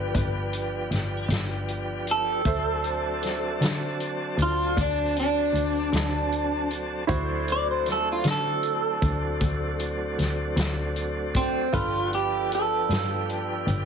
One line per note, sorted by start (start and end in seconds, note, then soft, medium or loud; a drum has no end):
0.00 0.11 G1 medium
0.00 2.42 F3 medium
0.00 2.42 B3 medium
0.00 2.42 D4 medium
0.00 2.42 F4 soft
0.00 2.42 G4 medium
0.00 2.42 A4 soft
0.00 1.29 B4 medium
0.00 2.43 B4 soft
0.15 0.88 G1 medium
0.15 kick medium
0.15 closed hi-hat medium
0.53 closed hi-hat medium
0.91 1.27 G1 medium
0.91 snare soft
0.91 closed hi-hat medium
1.29 2.41 G1 medium
1.29 snare medium
1.29 closed hi-hat medium
1.68 closed hi-hat soft
2.07 closed hi-hat medium
2.11 4.37 A4 medium
2.45 3.57 D2 medium
2.45 7.05 F#3 medium
2.45 7.05 C4 medium
2.45 7.05 D4 medium
2.45 7.05 A4 medium
2.45 7.05 A4 soft
2.45 7.06 C5 soft
2.45 7.05 E5 soft
2.45 kick medium
2.45 closed hi-hat medium
2.84 closed hi-hat medium
3.23 snare soft
3.23 closed hi-hat medium
3.61 4.35 D3 medium
3.61 snare medium
3.61 closed hi-hat medium
4.00 closed hi-hat soft
4.38 4.74 D2 medium
4.38 closed hi-hat medium
4.42 4.78 F4 medium
4.77 5.50 D2 medium
4.77 5.17 D4 medium
4.77 kick medium
4.77 closed hi-hat medium
5.16 6.68 D4 medium
5.16 closed hi-hat soft
5.53 5.89 D2 medium
5.53 closed hi-hat medium
5.93 7.05 D2 medium
5.93 snare medium
5.93 closed hi-hat medium
6.32 closed hi-hat soft
6.71 closed hi-hat medium
7.07 8.21 D2 medium
7.07 11.69 F#3 medium
7.07 11.69 A3 medium
7.07 11.68 C4 medium
7.07 11.69 D4 medium
7.07 11.68 E4 soft
7.07 11.69 F#4 soft
7.07 11.69 C5 medium
7.07 kick medium
7.07 closed hi-hat medium
7.48 closed hi-hat medium
7.52 7.69 D5 medium
7.71 7.88 C5 medium
7.86 snare soft
7.86 closed hi-hat medium
7.92 8.08 A4 medium
8.12 8.28 F4 medium
8.24 8.98 D3 medium
8.24 snare medium
8.24 closed hi-hat medium
8.31 9.78 A4 medium
8.63 closed hi-hat medium
9.02 9.38 D2 medium
9.02 kick medium
9.02 closed hi-hat medium
9.41 10.14 D2 medium
9.41 kick medium
9.41 closed hi-hat medium
9.80 closed hi-hat medium
10.18 10.54 D2 medium
10.18 snare soft
10.18 closed hi-hat soft
10.57 11.69 D2 medium
10.57 snare loud
10.57 closed hi-hat medium
10.96 closed hi-hat soft
11.35 11.73 C4 medium
11.35 kick medium
11.35 closed hi-hat medium
11.73 12.85 G1 medium
11.73 13.85 F3 medium
11.73 13.85 B3 medium
11.73 13.85 D4 medium
11.73 13.85 F4 soft
11.73 12.11 F4 medium
11.73 13.85 G4 medium
11.73 13.85 A4 soft
11.73 13.85 B4 soft
11.73 kick medium
11.73 closed hi-hat medium
12.13 12.51 G4 medium
12.13 closed hi-hat medium
12.52 13.85 A4 medium
12.52 closed hi-hat medium
12.89 13.63 G2 medium
12.89 snare medium
12.89 closed hi-hat medium
13.29 closed hi-hat soft
13.67 13.85 G1 medium
13.67 closed hi-hat medium